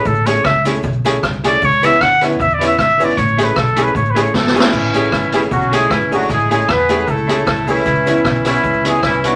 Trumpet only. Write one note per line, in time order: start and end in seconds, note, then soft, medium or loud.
0.07 0.28 A4 medium
0.26 0.46 C#5 loud
0.45 0.66 E5 loud
1.47 1.67 D5 loud
1.65 1.86 C#5 loud
1.85 2.03 E5 loud
2.02 2.22 F#5 loud
2.41 2.55 E5 loud
2.54 2.66 D5 loud
2.67 2.78 E5 medium
2.80 3.06 E5 loud
3.05 3.19 D5 medium
3.18 3.45 C#5 medium
3.44 3.59 B4 medium
3.58 3.85 A4 medium
3.83 3.95 B4 medium
3.96 4.12 C#5 medium
4.11 4.24 B4 medium
4.22 4.35 C#5 medium
4.36 4.71 A4 medium